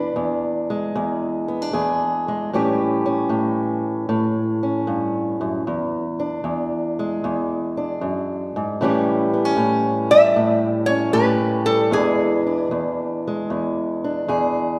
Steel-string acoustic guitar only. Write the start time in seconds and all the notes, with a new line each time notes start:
Already playing: E2 D4
0.16 E2
0.70 G#3
0.95 E2
1.48 B3
1.62 D4
1.73 E2 G#4
2.28 G#3
2.53 A2 E3 G3 C#4 G4
3.06 C#4
3.29 A2
4.09 A2
4.63 C#4
4.87 G2
5.41 F#2
5.67 E2
6.20 D4
6.44 E2
6.99 G#3
7.24 E2
7.77 D4
8.01 F#2
8.56 G#2
8.81 A2 E3 G3 C#4 G4
9.34 B3
9.45 C#4
9.57 A2
10.11 G3
10.36 A2
10.89 C#4
11.13 A2 G4
11.67 G3
11.91 E2 E3 G#3 D4
12.47 D4
12.71 E2
13.28 G#3
13.50 E2
14.04 D4
14.28 E2 G#4